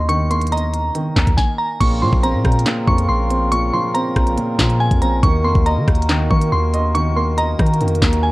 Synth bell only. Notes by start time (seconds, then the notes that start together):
0.09 C#6
0.31 C6
0.52 A#5
1.37 G#5
1.58 A#5
1.80 C#6
2.02 C6
2.23 A#5
2.88 C#6
3.09 C6
3.52 C#6
3.74 C6
3.95 A#5
4.80 G#5
5.02 A#5
5.23 C#6
5.45 C6
5.66 A#5
6.30 C#6
6.52 C6
6.94 C#6
7.16 C6
7.38 A#5
8.23 G#5